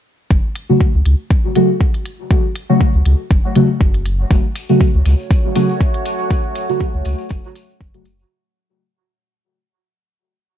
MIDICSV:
0, 0, Header, 1, 5, 480
1, 0, Start_track
1, 0, Key_signature, 3, "minor"
1, 0, Tempo, 500000
1, 294, Time_signature, 4, 2, 24, 8
1, 10153, End_track
2, 0, Start_track
2, 0, Title_t, "Ambient pad"
2, 0, Program_c, 0, 92
2, 4133, Note_on_c, 0, 73, 85
2, 4134, Note_on_c, 0, 57, 75
2, 4134, Note_on_c, 0, 66, 75
2, 7935, Note_off_c, 0, 73, 0
2, 7936, Note_off_c, 0, 57, 0
2, 7936, Note_off_c, 0, 66, 0
2, 10153, End_track
3, 0, Start_track
3, 0, Title_t, "Synth stab"
3, 0, Program_c, 1, 62
3, 666, Note_on_c, 1, 49, 92
3, 666, Note_on_c, 1, 54, 82
3, 666, Note_on_c, 1, 57, 84
3, 666, Note_on_c, 1, 66, 99
3, 845, Note_off_c, 1, 49, 0
3, 845, Note_off_c, 1, 54, 0
3, 845, Note_off_c, 1, 57, 0
3, 845, Note_off_c, 1, 66, 0
3, 1494, Note_on_c, 1, 49, 87
3, 1494, Note_on_c, 1, 54, 82
3, 1494, Note_on_c, 1, 57, 84
3, 1494, Note_on_c, 1, 66, 96
3, 1621, Note_off_c, 1, 49, 0
3, 1621, Note_off_c, 1, 57, 0
3, 1622, Note_off_c, 1, 54, 0
3, 1622, Note_off_c, 1, 66, 0
3, 2586, Note_on_c, 1, 54, 86
3, 2587, Note_on_c, 1, 49, 88
3, 2587, Note_on_c, 1, 57, 83
3, 2587, Note_on_c, 1, 66, 97
3, 2766, Note_off_c, 1, 49, 0
3, 2766, Note_off_c, 1, 54, 0
3, 2766, Note_off_c, 1, 57, 0
3, 2766, Note_off_c, 1, 66, 0
3, 3414, Note_on_c, 1, 49, 91
3, 3414, Note_on_c, 1, 54, 84
3, 3414, Note_on_c, 1, 57, 85
3, 3414, Note_on_c, 1, 66, 98
3, 3541, Note_off_c, 1, 49, 0
3, 3541, Note_off_c, 1, 54, 0
3, 3541, Note_off_c, 1, 57, 0
3, 3541, Note_off_c, 1, 66, 0
3, 4507, Note_on_c, 1, 49, 92
3, 4507, Note_on_c, 1, 54, 84
3, 4507, Note_on_c, 1, 57, 87
3, 4507, Note_on_c, 1, 66, 97
3, 4686, Note_off_c, 1, 49, 0
3, 4686, Note_off_c, 1, 54, 0
3, 4686, Note_off_c, 1, 57, 0
3, 4686, Note_off_c, 1, 66, 0
3, 5333, Note_on_c, 1, 54, 86
3, 5333, Note_on_c, 1, 66, 98
3, 5334, Note_on_c, 1, 49, 90
3, 5334, Note_on_c, 1, 57, 79
3, 5461, Note_off_c, 1, 49, 0
3, 5461, Note_off_c, 1, 54, 0
3, 5461, Note_off_c, 1, 57, 0
3, 5461, Note_off_c, 1, 66, 0
3, 6425, Note_on_c, 1, 49, 92
3, 6425, Note_on_c, 1, 54, 81
3, 6425, Note_on_c, 1, 57, 86
3, 6425, Note_on_c, 1, 66, 100
3, 6605, Note_off_c, 1, 49, 0
3, 6605, Note_off_c, 1, 54, 0
3, 6605, Note_off_c, 1, 57, 0
3, 6605, Note_off_c, 1, 66, 0
3, 7625, Note_on_c, 1, 49, 82
3, 7625, Note_on_c, 1, 54, 76
3, 7625, Note_on_c, 1, 57, 74
3, 7625, Note_on_c, 1, 66, 93
3, 7729, Note_off_c, 1, 54, 0
3, 7729, Note_off_c, 1, 66, 0
3, 7730, Note_off_c, 1, 49, 0
3, 7730, Note_off_c, 1, 57, 0
3, 10153, End_track
4, 0, Start_track
4, 0, Title_t, "Sub bass"
4, 0, Program_c, 2, 38
4, 293, Note_on_c, 2, 30, 98
4, 380, Note_off_c, 2, 30, 0
4, 906, Note_on_c, 2, 37, 79
4, 976, Note_off_c, 2, 37, 0
4, 1013, Note_on_c, 2, 37, 102
4, 1100, Note_off_c, 2, 37, 0
4, 2826, Note_on_c, 2, 37, 79
4, 2896, Note_off_c, 2, 37, 0
4, 2933, Note_on_c, 2, 37, 107
4, 3020, Note_off_c, 2, 37, 0
4, 3174, Note_on_c, 2, 30, 93
4, 3261, Note_off_c, 2, 30, 0
4, 3654, Note_on_c, 2, 30, 84
4, 4074, Note_off_c, 2, 30, 0
4, 4134, Note_on_c, 2, 30, 105
4, 4221, Note_off_c, 2, 30, 0
4, 4747, Note_on_c, 2, 37, 81
4, 4817, Note_off_c, 2, 37, 0
4, 4854, Note_on_c, 2, 37, 103
4, 4941, Note_off_c, 2, 37, 0
4, 6664, Note_on_c, 2, 37, 80
4, 6736, Note_off_c, 2, 37, 0
4, 6773, Note_on_c, 2, 37, 110
4, 6860, Note_off_c, 2, 37, 0
4, 7013, Note_on_c, 2, 30, 94
4, 7100, Note_off_c, 2, 30, 0
4, 7494, Note_on_c, 2, 30, 82
4, 7914, Note_off_c, 2, 30, 0
4, 10153, End_track
5, 0, Start_track
5, 0, Title_t, "Drums"
5, 293, Note_on_c, 9, 36, 111
5, 389, Note_off_c, 9, 36, 0
5, 533, Note_on_c, 9, 42, 78
5, 629, Note_off_c, 9, 42, 0
5, 773, Note_on_c, 9, 36, 104
5, 869, Note_off_c, 9, 36, 0
5, 1013, Note_on_c, 9, 42, 67
5, 1109, Note_off_c, 9, 42, 0
5, 1253, Note_on_c, 9, 36, 115
5, 1349, Note_off_c, 9, 36, 0
5, 1493, Note_on_c, 9, 42, 79
5, 1589, Note_off_c, 9, 42, 0
5, 1733, Note_on_c, 9, 36, 99
5, 1829, Note_off_c, 9, 36, 0
5, 1865, Note_on_c, 9, 42, 32
5, 1961, Note_off_c, 9, 42, 0
5, 1973, Note_on_c, 9, 42, 67
5, 2069, Note_off_c, 9, 42, 0
5, 2214, Note_on_c, 9, 36, 123
5, 2310, Note_off_c, 9, 36, 0
5, 2453, Note_on_c, 9, 42, 83
5, 2549, Note_off_c, 9, 42, 0
5, 2694, Note_on_c, 9, 36, 110
5, 2790, Note_off_c, 9, 36, 0
5, 2933, Note_on_c, 9, 42, 73
5, 3029, Note_off_c, 9, 42, 0
5, 3174, Note_on_c, 9, 36, 120
5, 3270, Note_off_c, 9, 36, 0
5, 3413, Note_on_c, 9, 42, 84
5, 3509, Note_off_c, 9, 42, 0
5, 3654, Note_on_c, 9, 36, 111
5, 3750, Note_off_c, 9, 36, 0
5, 3786, Note_on_c, 9, 42, 33
5, 3882, Note_off_c, 9, 42, 0
5, 3894, Note_on_c, 9, 42, 71
5, 3990, Note_off_c, 9, 42, 0
5, 4134, Note_on_c, 9, 36, 126
5, 4139, Note_on_c, 9, 54, 53
5, 4230, Note_off_c, 9, 36, 0
5, 4235, Note_off_c, 9, 54, 0
5, 4372, Note_on_c, 9, 54, 96
5, 4373, Note_on_c, 9, 42, 82
5, 4468, Note_off_c, 9, 54, 0
5, 4469, Note_off_c, 9, 42, 0
5, 4505, Note_on_c, 9, 54, 43
5, 4601, Note_off_c, 9, 54, 0
5, 4608, Note_on_c, 9, 54, 50
5, 4614, Note_on_c, 9, 36, 113
5, 4704, Note_off_c, 9, 54, 0
5, 4710, Note_off_c, 9, 36, 0
5, 4853, Note_on_c, 9, 54, 101
5, 4854, Note_on_c, 9, 42, 73
5, 4949, Note_off_c, 9, 54, 0
5, 4950, Note_off_c, 9, 42, 0
5, 4986, Note_on_c, 9, 54, 45
5, 5082, Note_off_c, 9, 54, 0
5, 5092, Note_on_c, 9, 54, 55
5, 5094, Note_on_c, 9, 36, 123
5, 5188, Note_off_c, 9, 54, 0
5, 5190, Note_off_c, 9, 36, 0
5, 5333, Note_on_c, 9, 42, 86
5, 5334, Note_on_c, 9, 54, 99
5, 5429, Note_off_c, 9, 42, 0
5, 5430, Note_off_c, 9, 54, 0
5, 5466, Note_on_c, 9, 54, 43
5, 5562, Note_off_c, 9, 54, 0
5, 5573, Note_on_c, 9, 36, 111
5, 5573, Note_on_c, 9, 54, 56
5, 5669, Note_off_c, 9, 36, 0
5, 5669, Note_off_c, 9, 54, 0
5, 5706, Note_on_c, 9, 42, 35
5, 5802, Note_off_c, 9, 42, 0
5, 5813, Note_on_c, 9, 42, 74
5, 5815, Note_on_c, 9, 54, 100
5, 5909, Note_off_c, 9, 42, 0
5, 5911, Note_off_c, 9, 54, 0
5, 5940, Note_on_c, 9, 54, 44
5, 6036, Note_off_c, 9, 54, 0
5, 6053, Note_on_c, 9, 36, 124
5, 6058, Note_on_c, 9, 54, 50
5, 6149, Note_off_c, 9, 36, 0
5, 6154, Note_off_c, 9, 54, 0
5, 6293, Note_on_c, 9, 42, 84
5, 6294, Note_on_c, 9, 54, 90
5, 6389, Note_off_c, 9, 42, 0
5, 6390, Note_off_c, 9, 54, 0
5, 6428, Note_on_c, 9, 54, 45
5, 6524, Note_off_c, 9, 54, 0
5, 6529, Note_on_c, 9, 54, 48
5, 6533, Note_on_c, 9, 36, 115
5, 6625, Note_off_c, 9, 54, 0
5, 6629, Note_off_c, 9, 36, 0
5, 6767, Note_on_c, 9, 54, 96
5, 6773, Note_on_c, 9, 42, 70
5, 6863, Note_off_c, 9, 54, 0
5, 6869, Note_off_c, 9, 42, 0
5, 6896, Note_on_c, 9, 54, 41
5, 6992, Note_off_c, 9, 54, 0
5, 7001, Note_on_c, 9, 54, 55
5, 7013, Note_on_c, 9, 36, 123
5, 7097, Note_off_c, 9, 54, 0
5, 7109, Note_off_c, 9, 36, 0
5, 7146, Note_on_c, 9, 54, 41
5, 7242, Note_off_c, 9, 54, 0
5, 7253, Note_on_c, 9, 42, 85
5, 7262, Note_on_c, 9, 54, 94
5, 7349, Note_off_c, 9, 42, 0
5, 7358, Note_off_c, 9, 54, 0
5, 7387, Note_on_c, 9, 54, 43
5, 7483, Note_off_c, 9, 54, 0
5, 7493, Note_on_c, 9, 36, 112
5, 7493, Note_on_c, 9, 54, 50
5, 7589, Note_off_c, 9, 36, 0
5, 7589, Note_off_c, 9, 54, 0
5, 7626, Note_on_c, 9, 42, 36
5, 7722, Note_off_c, 9, 42, 0
5, 7730, Note_on_c, 9, 54, 93
5, 7734, Note_on_c, 9, 42, 73
5, 7826, Note_off_c, 9, 54, 0
5, 7830, Note_off_c, 9, 42, 0
5, 7866, Note_on_c, 9, 54, 44
5, 7962, Note_off_c, 9, 54, 0
5, 10153, End_track
0, 0, End_of_file